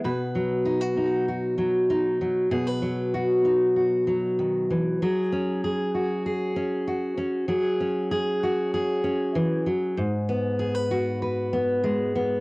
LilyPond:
\new Staff \with { instrumentName = "Steel-string acoustic guitar" } { \time 4/4 \key b \major \tempo 4 = 97 << { <b b'>4 dis'16 fis'16 dis'8 fis'4 dis'4 | gis'16 b'8. fis'8 dis'8 fis'2 | gis'4 gis'8 fis'8 gis'4 fis'4 | gis'4 gis'8 fis'8 gis'2~ |
gis'8 b8 gis'16 b'16 fis'8 b'8 b4 b8 | } \\ { b,8 fis2 fis4 fis8 | b,8 fis2 fis8 dis8 e8 | fis8 cis'2 cis'4 cis'8 | fis8 cis'2 cis'8 e8 fis8 |
gis,2. gis4 | } >> }